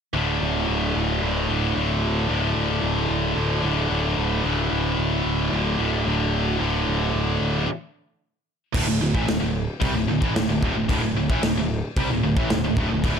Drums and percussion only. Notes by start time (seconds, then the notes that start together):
8.74 kick, crash
9.15 kick
9.28 snare, crash
9.82 kick, crash
10.22 kick
10.36 snare, crash
10.63 kick
10.89 kick, crash
11.30 kick
11.43 snare, crash
11.97 kick, crash
12.37 kick
12.50 snare, crash
12.77 kick
13.04 kick, crash